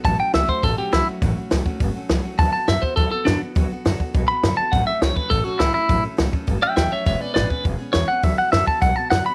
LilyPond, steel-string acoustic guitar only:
\new Staff \with { instrumentName = "Steel-string acoustic guitar" } { \time 4/4 \key a \major \tempo 4 = 205 <a, e fis a cis' fis'>8 <fis a cis' fis'>8 <a, e fis a cis' fis'>8 <fis a cis' fis'>8 <fis a cis' fis'>8 <fis a cis' fis'>8 <a, e fis a cis' fis'>8 <fis a cis' fis'>8 | <a, e fis a cis' fis'>8 <fis a cis' fis'>8 <a, e fis a cis' fis'>8 <fis a cis' fis'>8 <fis a cis' fis'>8 <fis a cis' fis'>8 <a, e fis a cis' fis'>8 <fis a cis' fis'>8 | <d fis b fis' a'>8 <b fis' a'>8 <d fis b fis' a'>8 <b fis' a'>8 <fis b fis' a'>8 <b fis' a'>8 <d fis b fis' a'>8 <b fis' a'>8 | <d fis b fis' a'>8 <b fis' a'>8 <d fis b fis' a'>8 <b fis' a'>8 <fis b fis' a'>8 <b fis' a'>8 <d fis b fis' a'>8 <b fis' a'>8 |
<a, e fis a cis' a'>8 <fis a cis' a'>8 <a, e fis a cis' a'>8 <fis a cis' a'>8 <fis a cis' a'>8 <fis a cis' a'>8 <a, e fis a cis' a'>8 <fis a cis' a'>8 | <a, e fis a cis' a'>8 <fis a cis' a'>8 <a, e fis a cis' a'>8 <fis a cis' a'>8 <fis a cis' a'>8 <fis a cis' a'>8 <a, e fis a cis' a'>8 <fis a cis' a'>8 | <e gis b cis' gis'>8 <b cis' gis'>8 <e gis b cis' gis'>8 <b cis' gis'>8 <gis b cis' gis'>8 <b cis' gis'>8 <e gis b cis' gis'>8 <b cis' gis'>8 | <d fis b fis' a'>8 <fis' a'>8 <d fis b fis' a'>8 <b fis'>8 <fis b fis' a'>8 <b fis' a'>8 <d fis b fis' a'>8 <b fis' a'>8 | }